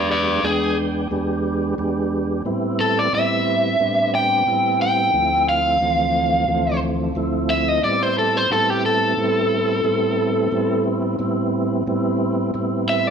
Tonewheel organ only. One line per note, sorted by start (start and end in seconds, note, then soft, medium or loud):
0.00 0.40 E2 medium
0.00 0.40 G#3 medium
0.00 0.40 B3 medium
0.00 0.40 D4 medium
0.00 0.40 G4 medium
0.43 1.07 E2 medium
0.43 1.07 G#3 medium
0.43 1.07 B3 medium
0.43 1.08 D4 medium
0.43 1.08 G5 medium
1.11 1.74 E2 medium
1.11 1.75 G#3 medium
1.11 1.75 B3 medium
1.11 1.75 D4 medium
1.11 1.75 G4 loud
1.78 2.42 E2 medium
1.78 2.42 G#3 medium
1.78 2.42 B3 medium
1.78 2.42 D4 medium
1.78 2.42 G4 medium
2.45 3.09 A2 medium
2.45 3.09 G3 medium
2.45 3.09 B3 medium
2.45 3.09 C4 medium
2.45 3.09 E4 medium
3.12 3.76 A2 medium
3.12 3.76 G3 medium
3.12 3.76 B3 medium
3.12 3.77 C4 medium
3.12 3.77 E4 medium
3.80 4.43 A2 medium
3.80 4.43 G3 medium
3.80 4.44 B3 medium
3.80 4.44 C4 medium
3.80 4.44 D4 medium
4.46 5.10 A2 medium
4.46 5.11 G3 medium
4.46 5.11 B3 medium
4.46 5.11 C4 medium
4.46 5.11 E4 medium
5.13 5.77 D2 medium
5.13 5.78 F3 medium
5.13 5.78 A3 medium
5.13 5.78 C4 medium
5.13 5.78 E4 medium
5.80 6.45 D2 medium
5.80 6.45 E3 medium
5.80 6.45 F3 medium
5.80 6.45 A3 medium
5.80 6.45 C4 medium
6.48 7.12 D2 medium
6.48 7.13 E3 loud
6.48 7.12 F3 medium
6.48 7.12 A3 medium
6.48 7.12 C4 medium
7.15 7.79 D2 medium
7.15 7.80 F3 medium
7.15 7.80 A3 medium
7.15 7.80 C4 medium
7.15 7.80 E4 loud
7.83 8.47 A2 medium
7.83 8.47 G3 medium
7.83 8.47 B3 medium
7.83 8.47 C4 medium
7.83 8.47 E4 medium
8.50 9.14 A2 medium
8.50 9.14 G3 medium
8.50 9.14 B3 medium
8.50 9.14 C4 medium
8.50 9.15 E4 medium
9.17 9.81 A2 medium
9.17 9.81 G3 medium
9.17 9.82 B3 medium
9.17 9.82 C4 medium
9.17 9.82 E4 medium
9.84 10.48 A2 medium
9.84 10.48 G3 medium
9.84 10.48 B3 medium
9.84 10.48 C4 medium
9.84 10.49 E4 medium
10.51 11.16 A2 medium
10.51 11.16 G3 medium
10.51 11.16 B3 medium
10.51 11.16 C4 medium
10.51 11.16 E4 medium
11.19 11.83 A2 medium
11.19 11.83 G3 medium
11.19 11.83 B3 medium
11.19 11.83 C4 medium
11.19 11.84 E4 loud
11.87 12.51 A2 medium
11.87 12.51 G3 medium
11.87 12.51 B3 medium
11.87 12.51 C4 medium
11.87 12.51 E4 loud
12.54 13.10 A2 medium
12.54 13.10 G3 medium
12.54 13.10 B3 medium
12.54 13.10 C4 medium
12.54 13.10 E4 medium